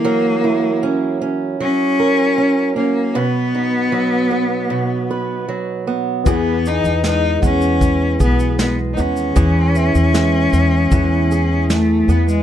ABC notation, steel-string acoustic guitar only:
X:1
M:4/4
L:1/8
Q:1/4=77
K:E
V:1 name="Steel-string acoustic guitar"
[F,^A] E C C F, A C C | [B,,B] D F, B, B,, B F, B, | [E,G]2 G, B,2 G G, B, | [E,G] E G, B, E, G2 B, |]